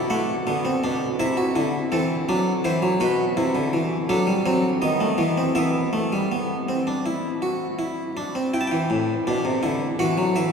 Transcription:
harpsichord
Already playing: B2
0.10 A3 F#5
0.47 D3 B3
0.65 C4
0.84 B2 D4
1.19 C3 E4 E5
1.37 F#4
1.56 D3 E4
1.92 E3 C4 A4
2.29 F#3 D4
2.64 E3 E4 C5
2.82 F#3
3.00 B2 F#4 B4
3.37 C3 E4
3.55 D3
3.73 E3
4.09 F#3 D4 A4
4.27 G3
4.46 F#3 C4
4.82 D#3 B3 D#5
5.01 A3
5.18 E3 B3
5.38 C4
5.55 E3 B3 E5
5.93 A3
6.12 G3
6.32 B3
6.69 C4
6.87 D4
7.06 E4
7.42 F#4
7.79 E4
8.17 D4
8.35 C4
8.54 E4 G5
8.61 A5
8.67 G5
8.72 E3
8.90 A2
9.27 B2 D4
9.45 C3
9.63 D3 E4
9.99 E3 F#4 F#5
10.18 F#3
10.36 E3 E5

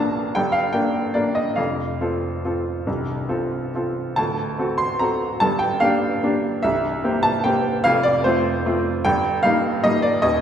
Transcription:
upright piano
Already playing: A#1 A#2 A#3 D4 A#4 F5 A5 A#5
0.35 G1 G2 G5
0.52 F5
0.73 A#3 D4 A#4 G5
1.14 A#3 D4 A#4 D5
1.35 D#5
1.56 F1 F2 F5
2.01 C4 F4 A4
2.45 C4 F4 A4
2.87 C1 C2
3.29 C4 F4 A4
3.75 C4 F4 A4
4.16 D1 D2 A5
4.58 C4 F#4 A4
4.78 C6
4.99 C4 F#4 A4 A#5
5.40 G1 G2 A5
5.59 G5
5.80 A#3 D4 G4 F5
6.23 A#3 D4 G4
6.63 C1 C2 E5
7.04 A#3 C4 G4
7.23 A5
7.44 A#3 C4 G4 G5
7.84 F1 F2 F5
8.03 D5
8.24 A3 C4 F4 C5
8.66 A3 C4 F4
9.05 G1 G2 G5
9.43 G3 A#3 D#4 F5
9.84 G3 A#3 D#4 D#5
10.02 D5
10.22 D#1 D#2 D#5

